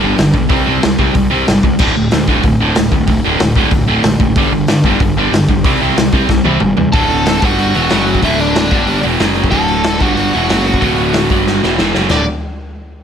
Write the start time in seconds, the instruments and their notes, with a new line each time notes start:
0.00 picked electric bass G1, distorted electric guitar G2 D3 G3
0.17 picked electric bass G1, distorted electric guitar G2 D3, snare, open hi-hat
0.34 picked electric bass B1, distorted electric guitar G2 D3, kick
0.49 picked electric bass C2, distorted electric guitar C3 G3 C4, kick, open hi-hat
0.66 picked electric bass C2, distorted electric guitar C3 G3 C4
0.82 picked electric bass C2, distorted electric guitar C3 G3, snare, open hi-hat
0.99 picked electric bass C2, distorted electric guitar C3 G3 C4, kick
1.13 picked electric bass C2, distorted electric guitar C3 G3, kick, open hi-hat
1.30 picked electric bass C2, distorted electric guitar C3 G3 C4
1.47 picked electric bass G1, distorted electric guitar C3 G3, snare, open hi-hat
1.63 picked electric bass C2, distorted electric guitar C3 G3, kick
1.79 picked electric bass D1, distorted electric guitar D2 A2 D3, kick, crash
1.96 picked electric bass D1, distorted electric guitar D2 A2
2.11 distorted electric guitar D2 A2, picked electric bass D2, snare, open hi-hat
2.28 picked electric bass D1, distorted electric guitar D2 A2 D3, kick
2.43 picked electric bass D1, distorted electric guitar D2 A2, kick, open hi-hat
2.60 picked electric bass D1, distorted electric guitar D2 A2 D3
2.75 picked electric bass D1, distorted electric guitar D2 A2, snare, open hi-hat
2.92 picked electric bass D1, distorted electric guitar D2 A2, kick
3.07 picked electric bass D1, distorted electric guitar D2 A2, kick, open hi-hat
3.25 picked electric bass D1, distorted electric guitar D2 A2 D3
3.39 picked electric bass D1, distorted electric guitar D2 A2, snare, open hi-hat
3.55 picked electric bass D1, distorted electric guitar D2 A2 D3, kick
3.71 picked electric bass D1, distorted electric guitar D2 A2, kick, open hi-hat
3.87 picked electric bass D1, distorted electric guitar D2 A2 D3
4.03 picked electric bass A1, distorted electric guitar D2 A2, snare, open hi-hat
4.20 picked electric bass F#1, distorted electric guitar D2 A2, kick
4.36 picked electric bass G1, distorted electric guitar G2 D3 G3, kick, open hi-hat
4.52 picked electric bass G1, distorted electric guitar G2 D3
4.67 picked electric bass G2, distorted electric guitar G2 D3, snare, open hi-hat
4.84 picked electric bass G1, distorted electric guitar G2 D3 G3, kick
5.00 picked electric bass G1, distorted electric guitar G2 D3, kick, open hi-hat
5.16 picked electric bass G1, distorted electric guitar G2 D3 G3
5.31 picked electric bass G1, distorted electric guitar G2 D3, snare, open hi-hat
5.49 picked electric bass G1, distorted electric guitar G2 D3, kick
5.64 picked electric bass C2, distorted electric guitar C3 G3 C4, kick, open hi-hat
5.81 picked electric bass C2, distorted electric guitar C3 G3 C4
5.97 picked electric bass C2, distorted electric guitar C3 G3, snare, open hi-hat
6.12 picked electric bass C2, distorted electric guitar C3 G3 C4, kick
6.29 picked electric bass C2, distorted electric guitar C3 G3, kick, snare
6.45 picked electric bass C2, distorted electric guitar C3 G3 C4, high tom
6.60 picked electric bass G1, distorted electric guitar C3 G3, mid tom
6.77 picked electric bass E2, distorted electric guitar C3 G3, floor tom
6.93 picked electric bass D1, distorted electric guitar D2 A2 D3, overdriven electric guitar A4 A5, kick, open hi-hat
7.10 open hi-hat
7.26 snare, open hi-hat
7.42 picked electric bass G1, distorted electric guitar G2 D3 G3, overdriven electric guitar F#4 F#5, kick, open hi-hat
7.58 open hi-hat
7.74 picked electric bass E1, distorted electric guitar E2 B2 E3, open hi-hat
7.90 picked electric bass F#1, distorted electric guitar F#2 C#3 F#3, snare, open hi-hat
8.07 open hi-hat
8.15 kick
8.22 picked electric bass D1, distorted electric guitar D2 A2 D3, overdriven electric guitar E4 E5, kick, open hi-hat
8.39 overdriven electric guitar D4 D5, open hi-hat
8.55 snare, open hi-hat
8.71 picked electric bass G1, distorted electric guitar G2 D3 G3, kick, open hi-hat
8.87 open hi-hat
9.02 picked electric bass E1, distorted electric guitar E2 B2 E3, open hi-hat
9.19 picked electric bass F#1, distorted electric guitar F#2 C#3 F#3, snare, open hi-hat
9.35 open hi-hat
9.44 kick
9.51 picked electric bass D1, distorted electric guitar D2 A2 D3, overdriven electric guitar A4 A5, kick, open hi-hat
9.68 open hi-hat
9.84 snare, open hi-hat
10.00 picked electric bass G1, distorted electric guitar G2 D3 G3, overdriven electric guitar F#4 F#5, kick, open hi-hat
10.15 overdriven electric guitar F#4 F#5, open hi-hat
10.33 picked electric bass E1, distorted electric guitar E2 B2 E3, open hi-hat
10.49 picked electric bass F#1, distorted electric guitar F#2 C#3 F#3, snare, open hi-hat
10.66 open hi-hat
10.74 kick
10.80 picked electric bass D1, distorted electric guitar D2 A2 D3, kick, open hi-hat
10.98 open hi-hat
11.13 snare, open hi-hat
11.30 picked electric bass G1, distorted electric guitar G2 D3 G3, kick, open hi-hat
11.47 snare
11.62 picked electric bass E1, distorted electric guitar E2 B2 E3, snare
11.78 picked electric bass E1, distorted electric guitar E2 B2 E3, snare
11.94 picked electric bass F#1, distorted electric guitar F#2 C#3 F#3, snare
12.09 picked electric bass D1, distorted electric guitar D2 A2 D3, overdriven electric guitar D5, snare, floor tom, splash